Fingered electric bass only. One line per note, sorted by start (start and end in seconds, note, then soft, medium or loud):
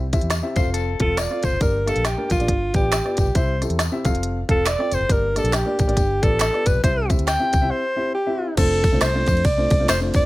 0.00 0.16 C2 loud
0.23 0.41 E2 medium
0.56 0.64 F1 medium
0.66 0.95 F1 medium
1.00 1.26 E1 medium
1.44 1.51 F1 medium
1.53 1.60 F#1 medium
1.61 1.91 G1 loud
1.96 2.15 A#1 medium
2.31 2.38 A#1 loud
2.40 2.47 A1 medium
2.49 2.71 G1 medium
2.74 3.00 A1 medium
3.18 3.25 G1 medium
3.27 3.34 B1 medium
3.35 3.65 C2 loud
3.70 3.88 E2 medium
4.05 4.13 F1 loud
4.14 4.43 F1 medium
4.49 4.75 E1 medium
4.92 4.99 F1 medium
5.00 5.08 F#1 medium
5.10 5.39 G1 loud
5.44 5.63 A#1 medium
5.80 5.87 A#1 medium
5.88 5.95 A1 medium
5.97 6.19 G1 medium
6.23 6.49 A1 loud
6.66 6.73 G1 medium
6.74 6.82 B1 medium
6.84 7.13 C2 loud
7.18 7.37 D2 medium
7.54 7.61 D2 medium
7.62 7.69 C2 medium
8.58 8.87 F1 loud
8.93 9.00 C2 medium
9.02 9.24 C2 loud
9.28 9.42 F2 loud
9.45 9.67 C2 medium
9.71 9.86 C2 medium
9.89 10.11 F1 medium
10.15 10.26 E1 medium